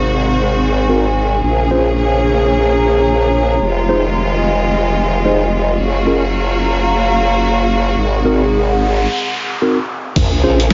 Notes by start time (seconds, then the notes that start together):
Already playing: G#1 C3 G#3 F#4 C5 F5 A#5
0.26 G#5
0.89 C4 D#4 F#4 A#4
1.43 A#1 C#3 A#3 G#4
1.52 C#5
1.71 C#4 F4 G#4 C5
2.43 A#5
3.61 F1 D#3 G#3 F4
3.88 D#4 F4 G#4 C5 D#5
3.93 G#5
5.25 D#4 F4 G#4 C5
5.79 F#1 A#3 F4 F#4
6.05 C#4 F4 G#4 A#4 A#5
6.35 F5
7.97 G#1 C3 G#3 G#4, noise sweep
8.25 C4 D#4 F#4 A#4
8.35 F#5
8.76 C6
9.62 C4 D#4 F#4 A#4
10.16 A#1 C#3 A#3 G#4, kick, closed hi-hat, crash, sub drop
10.43 A#1 C#4 F4 G#4 C5
10.60 closed hi-hat